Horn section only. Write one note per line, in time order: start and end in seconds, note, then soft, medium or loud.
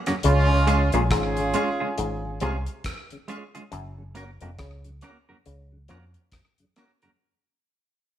0.24 0.89 G#3 loud
0.24 0.90 C#4 loud
0.24 0.89 F4 loud
0.93 1.07 C#4 medium
0.93 1.07 F4 medium
0.93 1.07 G#4 medium
1.10 2.37 C#4 loud
1.10 2.37 F4 loud
1.10 2.37 G#4 loud
2.41 2.57 C#4 medium
2.41 2.57 F4 medium
2.41 2.57 G#4 medium